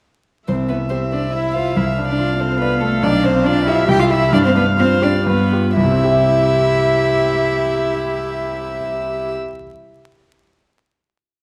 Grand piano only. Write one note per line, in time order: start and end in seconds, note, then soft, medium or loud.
0.48 1.73 C2 soft
0.70 1.04 E4 soft
0.91 1.25 G4 soft
1.12 1.47 C5 soft
1.35 1.69 E5 soft
1.56 1.77 C5 soft
1.76 2.99 C2 soft
1.98 2.32 D4 soft
2.18 2.52 F4 soft
2.40 2.74 A4 soft
2.62 2.95 D5 soft
2.81 3.03 A4 medium
3.03 3.86 B1 medium
3.25 3.59 D4 soft
3.46 3.80 F4 medium
3.67 3.89 G4 soft
3.88 4.31 C2 medium
4.10 4.30 E4 soft
4.10 4.30 G4 medium
4.33 5.24 G2 medium
4.55 4.92 D4 medium
4.77 5.16 F4 medium
5.02 5.26 G4 medium
5.27 5.75 G2 medium
5.52 5.74 F4 soft
5.52 5.75 G4 soft
5.77 9.33 C2 medium
5.84 9.41 C3 medium
5.91 9.48 C4 medium
5.98 9.55 E4 medium
6.04 9.61 G4 medium
6.12 9.69 E5 medium